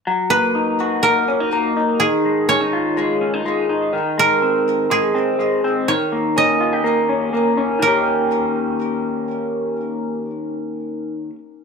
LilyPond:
<<
  \new Staff \with { instrumentName = "Koto" } { \time 4/4 \key ees \mixolydian \tempo 4 = 124 r8 b'4. ais'4. r8 | aes'4 des''2 r4 | r8 bes'4. aes'4. r8 | des''4 ees''2 r4 |
bes'1~ | bes'1 | }
  \new Staff \with { instrumentName = "Clean electric guitar" } { \time 4/4 \key ees \mixolydian fis8 ais8 dis'8 fis'8 ais8 des'16 dis'16 ais8 dis'8 | ees8 aes8 des'16 ees'16 f'8 aes8 des'16 ees'16 aes8 ees'8 | ees8 aes8 c'4 aes8 c'8 aes8 c'8 | ees8 bes8 des'8 f'16 g'16 bes8 des'8 bes8 des'8 |
<ees bes des' g'>1~ | <ees bes des' g'>1 | }
>>